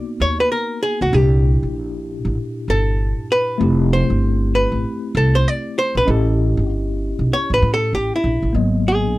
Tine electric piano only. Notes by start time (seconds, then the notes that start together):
Already playing: A#3 B3 D#4 F#4
1.11 A#2 D4 E4
1.16 G4
3.58 A3 C4 E4
3.63 G4
6.05 C#4 E4 D#5
6.10 G4
8.53 A#3 B3 D#5
8.58 F#3